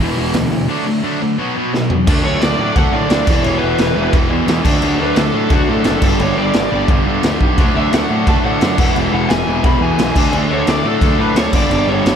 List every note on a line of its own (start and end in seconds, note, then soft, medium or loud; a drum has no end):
0.00 0.13 E1 medium
0.00 0.16 E2 medium
0.00 0.17 B2 medium
0.00 0.17 E3 medium
0.00 0.68 G#3 loud
0.00 0.69 B3 loud
0.00 0.69 E4 loud
0.17 0.31 E1 medium
0.17 0.33 E2 medium
0.17 0.33 B2 medium
0.17 0.34 E3 loud
0.33 0.48 D2 medium
0.33 0.50 E2 medium
0.33 0.50 B2 medium
0.33 snare medium
0.33 open hi-hat medium
0.52 0.66 D2 medium
0.52 0.68 E2 medium
0.52 0.68 B2 medium
0.68 0.84 D3 loud
0.68 1.38 F#3 medium
0.68 0.84 A3 medium
0.68 0.86 D4 loud
0.86 1.02 D3 medium
0.86 1.02 A3 medium
1.03 1.19 D3 loud
1.03 1.20 A3 loud
1.03 1.20 D4 loud
1.21 1.36 D3 medium
1.21 1.37 A3 medium
1.38 1.55 B2 medium
1.38 1.55 F#3 medium
1.38 1.55 B3 medium
1.38 2.07 D#4 medium
1.57 1.72 B2 medium
1.57 1.72 F#3 medium
1.57 1.73 B3 medium
1.74 1.89 B2 medium
1.74 1.89 F#3 medium
1.74 snare medium
1.90 2.06 B2 medium
1.90 2.07 F#3 medium
1.90 floor tom medium
2.07 2.19 D2 loud
2.07 2.25 D3 loud
2.07 2.76 F#3 medium
2.07 2.25 A3 loud
2.07 2.26 D4 loud
2.07 kick loud
2.07 crash loud
2.07 crash medium
2.24 2.36 D2 loud
2.24 2.41 D3 medium
2.24 2.42 A3 medium
2.24 2.42 D4 loud
2.24 2.41 C#5 loud
2.41 2.54 D2 loud
2.41 2.59 D3 medium
2.41 2.59 A3 medium
2.41 2.59 D4 loud
2.41 2.76 D5 medium
2.41 snare loud
2.41 crash medium
2.59 2.71 A2 medium
2.59 2.76 D3 medium
2.59 2.77 A3 medium
2.59 2.77 D4 medium
2.75 2.88 D2 medium
2.75 2.93 D3 loud
2.75 3.27 F#3 medium
2.75 2.94 A3 loud
2.75 2.94 D4 loud
2.75 2.94 F#5 loud
2.75 kick loud
2.75 crash medium
2.92 3.05 A2 loud
2.92 3.10 D3 medium
2.92 3.10 A3 medium
2.92 3.11 D4 loud
2.92 3.41 D5 loud
3.10 3.23 D2 loud
3.10 3.27 D3 medium
3.10 3.27 A3 medium
3.10 3.27 D4 medium
3.10 snare loud
3.10 crash medium
3.27 3.39 E1 medium
3.27 3.44 E2 loud
3.27 3.44 B2 loud
3.27 3.45 E3 loud
3.27 3.96 G#3 medium
3.27 3.96 B3 medium
3.27 3.95 E4 loud
3.27 kick loud
3.27 crash loud
3.43 3.56 E1 loud
3.43 3.61 E2 loud
3.43 3.61 B2 loud
3.43 3.62 E3 loud
3.43 3.58 C#5 medium
3.43 crash medium
3.58 3.74 E1 medium
3.58 3.78 E2 loud
3.58 4.12 B4 medium
3.62 3.78 B2 loud
3.62 3.78 E3 medium
3.78 3.91 E1 medium
3.78 3.94 E2 loud
3.78 3.95 B2 loud
3.78 3.95 E3 loud
3.78 snare loud
3.78 crash medium
3.95 4.07 E1 loud
3.95 4.12 E2 medium
3.95 4.12 B2 medium
3.95 4.12 E3 loud
3.95 4.65 G#3 medium
3.95 4.64 B3 medium
3.95 4.64 E4 medium
4.13 4.25 E1 medium
4.13 4.29 E2 medium
4.13 4.29 B2 loud
4.13 4.30 E3 loud
4.13 kick loud
4.13 crash medium
4.30 4.42 E2 loud
4.30 4.46 E2 medium
4.30 4.47 B2 medium
4.30 4.47 E3 loud
4.47 4.59 E2 loud
4.47 4.64 E2 medium
4.47 4.64 B2 medium
4.47 4.64 E3 loud
4.47 snare loud
4.47 crash medium
4.64 4.77 D2 medium
4.64 4.81 D3 loud
4.64 5.33 F#3 loud
4.64 4.81 A3 loud
4.64 4.82 D4 loud
4.64 kick loud
4.64 crash loud
4.82 4.94 D2 loud
4.82 4.98 D3 loud
4.82 4.98 A3 loud
4.82 4.99 D4 loud
4.82 crash medium
4.99 5.12 D2 medium
4.99 5.15 D3 medium
4.99 5.15 A3 medium
4.99 5.17 D4 loud
4.99 5.19 B4 medium
5.16 5.29 D2 medium
5.16 5.32 D3 loud
5.16 5.33 A3 loud
5.16 5.35 D4 loud
5.16 5.51 A4 medium
5.16 snare loud
5.16 crash medium
5.34 5.46 A2 loud
5.34 5.50 D3 medium
5.34 6.02 F#3 medium
5.34 5.51 A3 medium
5.34 5.52 D4 loud
5.50 5.63 D2 medium
5.50 5.68 D3 loud
5.50 5.68 A3 medium
5.50 5.70 D4 loud
5.50 5.71 F#4 loud
5.50 kick loud
5.50 crash medium
5.69 5.80 A2 medium
5.69 5.85 D3 medium
5.69 5.85 A3 loud
5.69 5.86 D4 loud
5.69 6.21 A4 loud
5.84 5.97 F#1 loud
5.84 6.02 D3 medium
5.84 6.02 A3 medium
5.84 7.59 D4 medium
5.84 snare loud
5.84 crash medium
6.02 6.14 G1 medium
6.02 6.18 G2 loud
6.02 6.19 D3 medium
6.02 6.19 G3 loud
6.02 6.70 B3 loud
6.02 6.70 D4 loud
6.02 kick loud
6.02 crash loud
6.20 6.32 G1 loud
6.20 6.36 G2 loud
6.20 6.36 D3 loud
6.20 6.37 G3 loud
6.20 6.37 C#5 loud
6.20 crash medium
6.37 6.49 G1 medium
6.37 6.53 G2 medium
6.37 6.53 D3 medium
6.37 6.53 G3 loud
6.37 6.86 D5 loud
6.53 6.66 G1 medium
6.53 6.71 G2 medium
6.53 6.71 D3 medium
6.53 6.72 G3 loud
6.53 snare loud
6.53 crash medium
6.70 6.84 G1 medium
6.70 6.89 G2 medium
6.70 6.89 D3 medium
6.70 6.90 G3 loud
6.70 7.39 B3 medium
6.70 7.39 D4 medium
6.88 7.00 G1 medium
6.88 7.05 G2 loud
6.88 7.06 D3 loud
6.88 7.06 G3 loud
6.88 kick loud
6.88 crash medium
7.06 7.18 G2 medium
7.06 7.22 G2 medium
7.06 7.23 D3 medium
7.06 7.24 G3 medium
7.23 7.35 D2 medium
7.23 7.41 G2 medium
7.23 7.42 D3 medium
7.23 7.42 G3 medium
7.23 snare loud
7.23 crash medium
7.40 7.52 B1 medium
7.40 7.58 G2 medium
7.40 7.57 D3 medium
7.40 7.58 G3 loud
7.40 kick medium
7.58 7.70 D2 loud
7.58 7.75 D3 loud
7.58 8.26 F#3 medium
7.58 7.75 A3 loud
7.58 7.75 D4 loud
7.58 kick loud
7.58 crash medium
7.75 7.87 D2 loud
7.75 7.91 D3 medium
7.75 7.92 A3 loud
7.75 7.92 D4 loud
7.75 7.92 E5 loud
7.92 8.04 D2 loud
7.92 8.08 D3 medium
7.92 8.09 A3 loud
7.92 8.09 D4 loud
7.92 8.29 F#5 medium
7.92 snare loud
7.92 crash medium
8.10 8.22 A2 loud
8.10 8.26 D3 medium
8.10 8.26 A3 loud
8.10 8.27 D4 medium
8.27 8.39 D2 loud
8.27 8.42 D3 medium
8.27 8.78 F#3 medium
8.27 8.43 A3 medium
8.27 8.43 D4 loud
8.27 8.33 A5 loud
8.27 kick loud
8.27 crash medium
8.43 8.56 A2 loud
8.43 8.60 D3 medium
8.43 8.61 A3 loud
8.43 8.61 D4 medium
8.43 8.93 F#5 loud
8.61 8.74 F#2 medium
8.61 8.78 D3 medium
8.61 8.78 A3 medium
8.61 8.78 D4 medium
8.61 snare loud
8.61 crash medium
8.78 8.90 E1 medium
8.78 8.94 E2 loud
8.78 8.95 B2 loud
8.78 8.96 E3 loud
8.78 9.46 G#3 medium
8.78 9.47 B3 loud
8.78 9.45 E4 loud
8.78 kick loud
8.78 crash loud
8.96 9.08 E1 loud
8.96 9.11 E2 loud
8.96 9.12 B2 loud
8.96 9.12 E3 loud
8.96 crash medium
9.12 9.24 E1 loud
9.12 9.28 E2 medium
9.12 9.29 B2 medium
9.12 9.30 E3 loud
9.12 9.28 F#5 medium
9.28 9.42 E1 loud
9.28 9.46 E2 medium
9.28 9.47 B2 loud
9.28 9.47 E3 loud
9.28 9.65 G#5 loud
9.28 snare loud
9.28 crash medium
9.47 9.59 E1 loud
9.47 9.63 E2 medium
9.47 9.64 B2 medium
9.47 9.64 E3 medium
9.47 10.15 G#3 medium
9.47 10.15 B3 medium
9.47 10.15 E4 loud
9.63 9.76 E1 medium
9.63 9.79 E2 loud
9.63 9.80 B2 loud
9.63 9.81 E3 medium
9.63 9.82 B5 loud
9.63 kick loud
9.63 crash medium
9.80 9.98 E2 medium
9.80 9.93 E2 medium
9.80 9.98 B2 medium
9.80 9.99 E3 loud
9.80 10.33 G#5 loud
9.98 10.10 B1 loud
9.98 10.15 E2 medium
9.98 10.15 B2 medium
9.98 10.16 E3 loud
9.98 snare loud
9.98 crash medium
10.15 10.28 D2 medium
10.15 10.32 D3 loud
10.15 10.84 F#3 loud
10.15 10.33 A3 loud
10.15 10.33 D4 loud
10.15 kick loud
10.15 crash loud
10.33 10.45 D2 loud
10.33 10.49 D3 loud
10.33 10.50 A3 loud
10.33 10.50 D4 loud
10.33 crash medium
10.50 10.62 D2 loud
10.50 10.65 D3 loud
10.50 10.66 A3 loud
10.50 10.67 D4 loud
10.50 10.69 C#5 medium
10.67 10.80 D2 medium
10.67 10.83 D3 medium
10.67 10.84 A3 loud
10.67 10.84 D4 loud
10.67 10.86 D5 loud
10.67 snare loud
10.67 crash medium
10.84 10.96 A2 medium
10.84 11.01 D3 medium
10.84 11.53 F#3 medium
10.84 11.01 A3 medium
10.84 11.01 D4 loud
10.84 11.18 A4 loud
11.01 11.13 D2 medium
11.01 11.17 D3 medium
11.01 11.18 A3 loud
11.01 11.18 D4 loud
11.01 kick loud
11.01 crash medium
11.18 11.31 A2 medium
11.18 11.35 D3 medium
11.18 11.36 A3 medium
11.18 11.36 D4 medium
11.18 11.38 B4 medium
11.35 11.47 D2 loud
11.35 11.53 D3 medium
11.35 11.53 A3 medium
11.35 11.53 D4 medium
11.35 11.52 C#5 medium
11.35 snare loud
11.35 crash medium
11.52 11.65 G1 medium
11.52 11.70 G2 medium
11.52 11.71 D3 loud
11.52 11.72 G3 loud
11.52 12.16 B3 loud
11.52 12.16 D4 loud
11.52 11.87 D5 medium
11.52 kick loud
11.52 crash loud
11.70 11.82 G1 loud
11.70 11.88 G2 loud
11.70 11.88 D3 loud
11.70 11.88 G3 loud
11.70 crash medium
11.87 11.99 G1 loud
11.87 12.05 G2 medium
11.87 12.05 D3 medium
11.87 12.06 G3 loud
11.87 12.16 C#5 loud
12.05 12.16 G1 medium
12.05 12.16 G2 loud
12.05 12.16 D3 medium
12.05 12.16 G3 loud
12.05 snare loud
12.05 crash medium